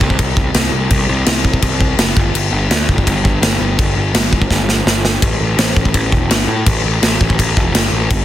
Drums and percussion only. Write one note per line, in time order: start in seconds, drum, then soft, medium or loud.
0.01 kick medium
0.10 kick medium
0.19 kick medium
0.19 crash medium
0.37 kick medium
0.54 snare loud
0.54 crash medium
0.91 kick loud
0.91 crash medium
1.26 snare loud
1.26 crash medium
1.45 kick medium
1.53 kick medium
1.62 kick loud
1.62 crash medium
1.81 kick medium
1.99 snare loud
1.99 crash medium
2.17 kick loud
2.35 crash medium
2.71 snare loud
2.71 crash medium
2.89 kick medium
2.98 kick medium
3.07 kick medium
3.07 crash medium
3.25 kick medium
3.43 snare loud
3.43 crash medium
3.79 kick loud
3.79 crash medium
4.15 snare loud
4.15 crash medium
4.33 kick loud
4.42 kick medium
4.51 kick loud
4.51 snare medium
4.69 snare medium
4.87 snare loud
5.05 snare loud
5.22 kick loud
5.22 crash medium
5.58 snare loud
5.58 crash medium
5.76 kick loud
5.85 kick loud
5.94 kick medium
5.94 crash medium
6.12 kick medium
6.31 snare loud
6.31 crash medium
6.66 kick loud
6.66 crash medium
7.03 snare loud
7.03 crash medium
7.21 kick loud
7.30 kick medium
7.39 kick loud
7.39 crash medium
7.57 kick medium
7.75 snare loud
7.75 crash medium
8.10 kick loud
8.10 crash medium